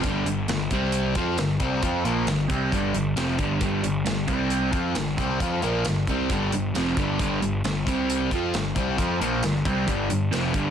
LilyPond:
<<
  \new Staff \with { instrumentName = "Overdriven electric guitar" } { \clef bass \time 4/4 \key c \major \tempo 4 = 134 <g, d g>8 <g, d>8 <g, d>8 <c g c'>4 <f c' f'>8 <g, d>8 <c g c'>8 | <f c' f'>8 <bes, f bes>8 <g, d>8 <c g c'>8 <g, d g>8 <g, d>8 <f, c f>8 <g, d g>8 | <g, d g>8 <g, d>8 <g, d>8 <c g c'>4 <f c' f'>8 <g, d>8 <c g c'>8 | <f c' f'>8 <bes, f bes>8 <g, d>8 <c g c'>8 <g, d g>8 <g, d>8 <f, c f>8 <g, d g>8 |
<g, d g>8 <g, d>8 <g, d>8 <c g c'>4 <f c' f'>8 <g, d>8 <c g c'>8 | <f c' f'>8 <bes, f bes>8 <g, d>8 <c g c'>8 <g, d g>8 <g, d>8 <f, c f>8 <g, d g>8 | }
  \new Staff \with { instrumentName = "Overdriven electric guitar" } { \clef bass \time 4/4 \key c \major <g, d g>8 <g, d>8 <g, d>8 <c g c'>4 <f c' f'>8 <g, d>8 <c g c'>8 | <f c' f'>8 <bes, f bes>8 <g, d>8 <c g c'>8 <g, d g>8 <g, d>8 <f, c f>8 <g, d g>8 | <g, d g>8 <g, d>8 <g, d>8 <c g c'>4 <f c' f'>8 <g, d>8 <c g c'>8 | <f c' f'>8 <bes, f bes>8 <g, d>8 <c g c'>8 <g, d g>8 <g, d>8 <f, c f>8 <g, d g>8 |
<g, d g>8 <g, d>8 <g, d>8 <c g c'>4 <f c' f'>8 <g, d>8 <c g c'>8 | <f c' f'>8 <bes, f bes>8 <g, d>8 <c g c'>8 <g, d g>8 <g, d>8 <f, c f>8 <g, d g>8 | }
  \new Staff \with { instrumentName = "Picked electric bass" } { \clef bass \time 4/4 \key c \major g,,8 g,,8 g,,8 c,4 f,8 g,,8 c,8 | f,8 bes,,8 g,,8 c,8 g,,8 g,,8 f,,8 g,,8 | g,,8 g,,8 g,,8 c,4 f,8 g,,8 c,8 | f,8 bes,,8 g,,8 c,8 g,,8 g,,8 f,,8 g,,8 |
g,,8 g,,8 g,,8 c,4 f,8 g,,8 c,8 | f,8 bes,,8 g,,8 c,8 g,,8 g,,8 f,,8 g,,8 | }
  \new DrumStaff \with { instrumentName = "Drums" } \drummode { \time 4/4 <hh bd>8 hh8 <hh sn>8 <hh bd>8 hh8 <hh bd>8 <hh sn>8 <hh bd>8 | <hh bd>8 hh8 <hh sn>8 <hh bd>8 <hh bd>8 hh8 <hh sn>8 <hh bd>8 | <hh bd>8 hh8 <hh sn>8 <hh bd>8 hh8 <hh bd>8 <hh sn>8 <hh bd>8 | <hh bd>8 hh8 <hh sn>8 <hh bd>8 <hh bd>8 hh8 <hh sn>8 <hh bd>8 |
<hh bd>8 hh8 <hh sn>8 <hh bd>8 hh8 <hh bd>8 <hh sn>8 <hh bd>8 | <hh bd>8 hh8 <hh sn>8 <hh bd>8 <hh bd>8 hh8 <hh sn>8 <hh bd>8 | }
>>